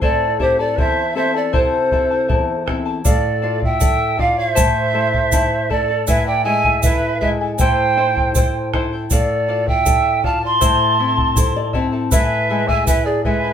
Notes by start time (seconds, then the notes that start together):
Already playing: C4 E4 A4
0.01 A2 E4 A4 C5 D5 E5 A5, bombo low
0.39 C4 E4 G4 A4 C5 E5 A5, bombo low
0.59 E4 A4 D5 A5
0.77 E2 E4 A4 C5 E5 A5, bombo low
1.15 C4 E4 A4 C5 E5 A5
1.34 E4 A4 D5 A5
1.53 C3 E4 A4 C5 E5 A5, bombo low
1.92 C4 E4 A4 E5 A5, bombo low
2.10 E4 A4 A5
2.28 E2 E4 A4 E5 A5, bombo low
2.66 C4 E4 A4 E5 A5, bombo rim, bombo low
2.85 E4 A4 A5
3.05 A2 A4 D5 F5, bombo low, shaker
3.42 F4 A4 D5 F5
3.60 D5 E5 F5, bombo low
3.65 G5
3.80 A4 D5, bombo low, shaker
4.17 F4 A4 D5 F5, bombo low
4.36 C#5 D5 F5
4.49 C5 E5
4.55 A2 E4 A4 C5 E5 A5, bombo low, shaker
4.93 A3 E4 A4 E5 A5
5.13 E4 A4 A5, bombo low
5.32 E4 A4 E5 A5, bombo low, shaker
5.69 A3 E4 A4 D5 E5 A5, bombo low
5.88 E4 A4 A5
6.07 A2 E4 A4 B4 E5 G#5, bombo low, shaker
6.26 D5 G5
6.44 G#3 E4 A4 E5 G#5
6.64 E4 A4 G#5, bombo low
6.82 E4 A4 B4 E5 G#5, bombo low, shaker
7.20 G#3 E4 A4 B4 E5 G#5, bombo low
7.41 E4 A4 G#5
7.58 A2 E4 G4 A4 C5 G5, bombo low, shaker
7.97 E4 A4 C5 G5
8.15 E4 A4 G5, bombo low
8.35 E4 A4 C5 G5, bombo low, shaker
8.73 E4 A4 C5 G5, bombo rim, bombo low
8.93 E4 A4 G5
9.10 A2 A4 D5 F5, bombo low, shaker
9.48 F4 A4 D5 F5
9.67 D5 E5 F5 G5, bombo low
9.85 A4 D5, bombo low, shaker
10.23 F4 A4 D5 F5 A5, bombo low
10.42 D5 F5 A5 C6
10.61 A2 E4 A4 C5 E5 A5, bombo low, shaker
10.99 C4 E4 A4 E5 A5
11.17 E4 A4 A5, bombo low
11.36 E4 A4 C5 E5 A5, bombo low, shaker
11.56 D5
11.73 C4 E4 A4 E5 A5, bombo low
11.92 E4 A4 A5
12.11 A2 E4 A4 B4 E5 G#5, bombo low, shaker
12.50 G#3 E4 A4 E5 G#5
12.68 E4 A4 E5 G#5, bombo low
12.87 E4 A4 B4 E5 G#5, bombo low, shaker
13.05 G#4 D5
13.24 G#3 E4 A4 B4 E5 G#5, bombo low
13.44 E4 A4 G#5